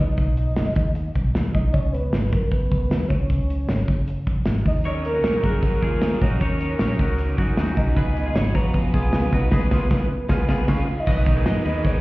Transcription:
0.00 C#2 D#5
0.17 B1, kick, closed hi-hat
0.37 closed hi-hat
0.56 F#1, snare, closed hi-hat
0.76 D#2, kick, closed hi-hat
0.95 closed hi-hat
1.15 B1, kick, closed hi-hat
1.35 D#2, snare, closed hi-hat
1.54 B1 D#5, kick, closed hi-hat
1.73 C#2 C#5, kick, closed hi-hat
1.93 B4, closed hi-hat
2.13 G#1, snare, closed hi-hat
2.32 F#2 A#4, kick, closed hi-hat
2.50 B4, kick, closed hi-hat
2.72 C#2, kick, closed hi-hat
2.90 D#2, snare, closed hi-hat
3.08 C#2 C#5, kick, closed hi-hat
3.30 C#2, kick, closed hi-hat
3.50 closed hi-hat
3.68 G#1, snare, closed hi-hat
3.88 F#1, kick, closed hi-hat
4.08 closed hi-hat
4.27 F1, kick, closed hi-hat
4.46 G#1, snare, closed hi-hat
4.66 D#2 D#5, kick, open hi-hat
4.84 D#3 F#3 C#4 D#4 A#4 C#5, closed hi-hat
5.03 C#4 D#4 A#4, closed hi-hat
5.15 F#4 A#4
5.23 A#1 D#3 F#3 C#4 D#4 A#4 C#5, snare, closed hi-hat
5.42 F#2 C#4 D#4 F#4 G#4 A#4, kick, closed hi-hat
5.61 F#3 C#4 D#4 A#4, kick, closed hi-hat
5.81 D#2 C#4 D#4 F4 G#4 A#4, kick, closed hi-hat
6.01 D#3 F#3 C#4 D#4 A#4, snare, closed hi-hat
6.20 A#1 C#4 D#4 F#4 A#4 C#5, kick, closed hi-hat
6.40 D#2 D#3 F#3 C#4 D#4 A#4 C#5, kick, closed hi-hat
6.60 C#4 D#4 A#4, closed hi-hat
6.71 F#4 A#4
6.79 A#1 D#3 F#3 C#4 D#4 A#4 C#5, snare, closed hi-hat
6.98 C#2 C#4 D#4 F#4 A#4, kick, closed hi-hat
7.17 F#3 C#4 D#4 A#4, closed hi-hat
7.37 F#2 C#4 D#4 F#4 A#4, kick, closed hi-hat
7.57 D#2 D#3 F#3 C#4 D#4 F#4 A#4, snare, closed hi-hat
7.75 B1 C#4 D#4 A#4 D#5, kick, closed hi-hat
7.95 C#2 C#3 G#3 B3 F4 G#4 B4, kick, closed hi-hat
8.15 B3 F4 B4, closed hi-hat
8.26 F4 G#4
8.35 G#1 C#3 G#3 B3 F4 G#4 B4 C#5, snare, closed hi-hat
8.55 F2 B3 F4 F#4 B4 A#5, kick, closed hi-hat
8.74 G#3 B3 F4 B4, kick, closed hi-hat
8.94 B1 B3 F4 G#4 B4, kick, closed hi-hat
9.13 C#2 C#3 G#3 B3 F4 B4, snare, closed hi-hat
9.33 B1 B3 D#4 F4 F#4 B4, kick, closed hi-hat
9.52 C#2 C#3 G#3 B3 F4 G#4 B4, kick, snare, crash
9.71 C#2 B3 F4 G#4 B4, kick, snare
9.90 C#2 C#3 G#3 B3 F4 B4, kick, snare
10.29 C#2 G#3 B3 F4 G#4 B4, kick, snare
10.49 C#2 B3 F4 G#4 B4, kick, snare
10.68 C#2 C#3 G#3 B3 C#4 F4 B4 F5, kick, snare, crash
10.99 D#5
11.07 B1 B2 D#3 F#3 B3 D#4 A#4 B4 D#5, kick, crash, tambourine
11.26 F#3 B3 D#4 A#4, kick, ride, tambourine
11.36 G#4 B4
11.44 F#2 B2 D#3 F#3 B3 D#4 A#4 B4 D#5, snare, ride, tambourine
11.65 D#2 F#3 B3 D#4 G#4 A#4 B4, ride, tambourine
11.84 F#3 B3 D#4 A#4 B4, kick, ride, tambourine

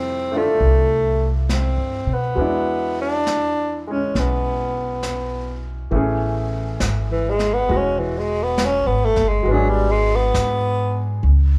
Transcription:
Already playing: F2 C3 F3 G3 A3 C4 E4
0.32 A3 D4 F4
0.37 A3
0.60 C2, brush sweep
1.49 C4, snare, hi-hat pedal
1.77 G2
2.07 B2
2.13 B3
2.35 E2 F#3 G#3 B3 D4, brush sweep
2.40 E4
3.01 D4
3.27 snare, hi-hat pedal
3.87 G#3 C#4
4.15 B1, brush sweep, snare
4.19 B3
5.03 snare, hi-hat pedal
5.91 A1 E3 A3 B3, brush sweep
5.95 C#4 G#4
6.80 G#1, snare, hi-hat pedal
7.12 E3
7.30 G#3
7.39 snare
7.54 B3
7.69 E1 G#3 F#4, brush sweep
7.77 C#4
7.99 E3
8.19 G#3
8.43 B3
8.58 snare, hi-hat pedal
8.65 C#4
8.87 G#1 B3
9.05 A3
9.16 G1, snare
9.28 G#3
9.43 G#1 F#3 G#3, brush sweep
9.48 F#3 B3 D4
9.54 G#4
9.70 G3
9.91 G#3
10.16 B3
10.34 G#2, snare, hi-hat pedal
11.23 C#2, brush sweep

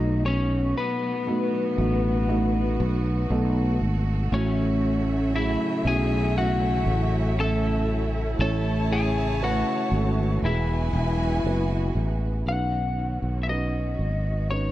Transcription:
Already playing: B1 B2 F#3 A3 B3 D#4 F#4 D#5
0.26 C#4 C#5
0.78 B3 B4
1.27 A3 B3 D#4 F#4
1.77 A1 A3 B3 D#4 F#4
2.28 A3 B3 D#4 F#4
2.80 B1
3.30 B1 A3 B3 D#4 A4
3.81 G#1
4.32 A1 A2 C#3 F#3 A3 C#4 E4 F#4 C#5 E5
5.35 A3 C#4 E4 G#4 E5
5.85 B1 A3 C#4 E4 F#4 G#4 G#5
6.37 A3 C#4 E4 F#4 F#5
6.86 A1
7.39 A3 C#4 E4 A4 A5
8.39 A1 C#3 E3 A3 C#4 E4 A4 C#5 A5
8.92 G#4 G#5
9.42 A3 C#4 E4 F#4 B4 F#5
9.92 G#1 A3 C#4 E4 A4
10.42 E1 B2 F#3 G#3 B3 E4 F#4 G#4 B4 E5 G#5
10.93 E1
11.44 F#1 B3 E4 F#4 B4
11.95 A1
12.46 B1 D#3 F#3 B3 C#4 D#4 F#4 B4 F#5
13.22 B1
13.43 E5
13.49 C#4 D#4 B4 D#5
13.99 G#1
14.50 C#4 D#4 B4 C#5

